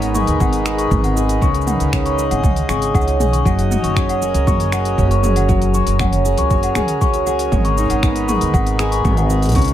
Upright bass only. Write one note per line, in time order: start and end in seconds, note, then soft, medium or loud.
0.00 0.23 G#1 medium
0.27 0.37 D#2 medium
0.40 0.86 G#1 loud
0.91 1.37 G#1 loud
1.42 1.75 C#2 medium
1.80 2.26 C#2 medium
2.31 2.41 G#1 medium
2.44 2.63 C#2 medium
2.69 2.94 G#1 medium
2.94 3.20 C#2 loud
3.20 3.39 B1 medium
3.45 3.79 F#1 medium
3.84 4.30 F#1 medium
4.34 4.44 C#2 medium
4.47 4.93 F#1 medium
4.98 5.82 F#1 medium
5.87 6.33 F#1 medium
6.38 6.47 C#2 medium
6.51 6.70 F#1 medium
6.76 7.47 C#2 medium
7.52 7.85 G#1 medium
7.90 8.36 G#1 medium
8.41 8.51 D#2 medium
8.54 9.00 G#1 loud
9.05 9.56 G#1 loud
9.56 9.74 C#2 medium